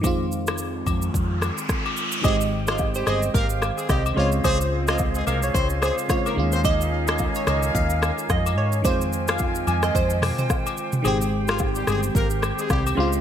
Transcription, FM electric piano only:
X:1
M:4/4
L:1/8
Q:"Swing 16ths" 1/4=109
K:Ab
V:1 name="FM electric piano"
[E,A,CF]8 | [E,A,CG]6- [E,A,CG] [D,A,CF]- | [D,A,CF]6 [D,A,CF] [E,A,DF]- | [E,A,DF]6- [E,A,DF] z |
[E,A,CF]8 | [E,A,CG]6- [E,A,CG] [D,A,CF] |]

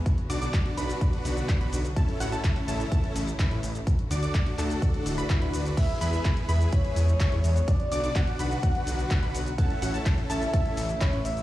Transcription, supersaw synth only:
X:1
M:4/4
L:1/16
Q:1/4=126
K:A
V:1 name="Supersaw synth"
z2 [DFd] [DFd] [DFd]2 [DFB]6- [DFB] [DFB]2 z | [CEA]2 [CEF] [CEA] [CEA]2 [CEA]2 [CEA]2 z2 [CEB]2 z2 | z2 [DFd] [DFd] [DFd]2 [DFA]4- [DFA] [DFB]2 [DFB]3 | [EGB]2 [EGB] [EGB] [EGB]2 [EGB]2 [EGB]2 z2 [EGc]2 z2 |
z2 [DFd] [DFd] [DFd]2 [DFB]6- [DFB] [DFB]2 z | [CEA]2 [CEF] [CEA] [CEA]2 [CEA]2 [CEA]2 z2 [CEB]2 z2 |]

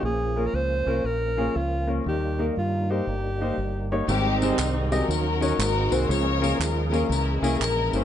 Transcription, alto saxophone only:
X:1
M:4/4
L:1/16
Q:"Swing" 1/4=119
K:Ab
V:1 name="Alto saxophone"
A3 B c4 B4 F4 | G3 z F2 G8 z2 | z16 | z16 |]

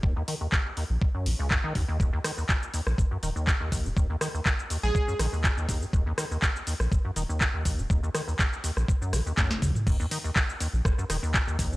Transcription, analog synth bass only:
X:1
M:4/4
L:1/16
Q:"Swing 16ths" 1/4=122
K:Ebm
V:1 name="Analog synth bass" clef=bass
E,,, z6 B,,, z2 B,,, z3 E,, z | E,,, z6 B,,, G,,, z E,,, z3 B,,, E,,, | E,,, z6 B,,, z2 B,,, z3 E,, z | E,,, z6 B,,, G,,, z E,,, z3 B,,, E,,, |
E,,, z6 B,,, z2 B,,, z3 E,, z | E,,, z6 B,,, G,,, z E,,, z3 B,,, E,,, |]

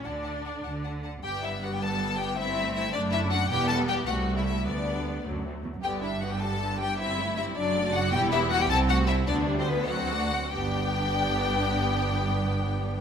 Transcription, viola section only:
X:1
M:6/8
L:1/8
Q:3/8=103
K:D
V:1 name="Viola section"
D4- D z | [K:G] [G,B,]6 | [A,C]3 [A,D]3 | [G,B,]3 [G,A,]3 |
[G,B,]3 [F,A,]2 z | [D,B,] [G,D] [D,B,] [G,D] [D,B,] [G,D] | [G,C] [A,E] [G,C] [F,D] [A,F] [F,D] | [G,E] [B,G] [G,E] [CE] [A,C] [CE] |
[D,B,] [G,D] [D,B,] [F,C] [A,D] [F,C] | [B,D]6- | [B,D]6 |]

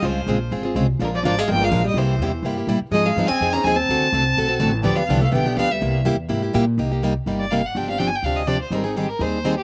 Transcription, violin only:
X:1
M:4/4
L:1/8
Q:"Swing" 1/4=249
K:Cphr
V:1 name="Violin"
c4 z4 | B =d d f g f2 e | c4 z4 | e f2 a2 b a =a- |
=a6- a z | =d f2 f g2 f =e- | =e z6 z | [K:Cm] z4 z d f ^f |
g f (3g a g f e d c | B E G B c3 G |]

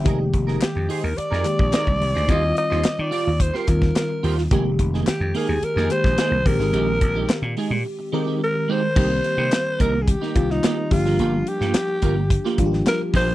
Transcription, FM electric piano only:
X:1
M:4/4
L:1/16
Q:1/4=108
K:Cm
V:1 name="FM electric piano"
g z12 z3 | z16 | z16 | z16 |
z16 | z16 |]
V:2 name="FM electric piano"
[E,A,B,G]8 z2 [E,A,B,G]6 | [E,G,C=EF]8 z2 [_E,G,CF]6 | [E,A,B,G]8 z2 [E,A,B,G]4 [E,A,CG]2- | [E,A,CG]6 z4 [E,A,CB]6 |
[E,G,B,CG]8 z2 [E,G,B,CF]4 [F,G,B,DG]2- | [F,G,B,DG]6 z4 [F,G,B,DFG]6 |]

